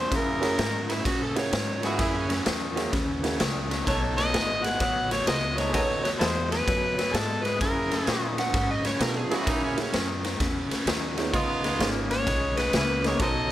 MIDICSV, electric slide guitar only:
0, 0, Header, 1, 2, 480
1, 0, Start_track
1, 0, Tempo, 466926
1, 126, Time_signature, 4, 2, 24, 8
1, 13895, End_track
2, 0, Start_track
2, 0, Title_t, "Electric slide guitar"
2, 0, Program_c, 0, 29
2, 932, Note_on_c, 0, 64, 88
2, 1086, Note_off_c, 0, 64, 0
2, 1093, Note_on_c, 0, 66, 82
2, 1247, Note_off_c, 0, 66, 0
2, 1256, Note_on_c, 0, 69, 75
2, 1408, Note_off_c, 0, 69, 0
2, 1426, Note_on_c, 0, 73, 80
2, 1885, Note_off_c, 0, 73, 0
2, 1900, Note_on_c, 0, 66, 74
2, 2051, Note_off_c, 0, 66, 0
2, 2062, Note_on_c, 0, 64, 78
2, 2212, Note_off_c, 0, 64, 0
2, 2220, Note_on_c, 0, 61, 80
2, 2473, Note_off_c, 0, 61, 0
2, 8626, Note_on_c, 0, 78, 108
2, 8932, Note_off_c, 0, 78, 0
2, 8951, Note_on_c, 0, 75, 75
2, 9100, Note_off_c, 0, 75, 0
2, 9115, Note_on_c, 0, 73, 81
2, 9262, Note_off_c, 0, 73, 0
2, 9271, Note_on_c, 0, 70, 80
2, 9420, Note_off_c, 0, 70, 0
2, 9434, Note_on_c, 0, 68, 87
2, 9581, Note_off_c, 0, 68, 0
2, 9611, Note_on_c, 0, 66, 77
2, 9750, Note_off_c, 0, 66, 0
2, 9759, Note_on_c, 0, 63, 81
2, 9903, Note_off_c, 0, 63, 0
2, 9916, Note_on_c, 0, 61, 82
2, 10062, Note_off_c, 0, 61, 0
2, 10094, Note_on_c, 0, 61, 85
2, 10333, Note_off_c, 0, 61, 0
2, 13895, End_track
0, 0, End_of_file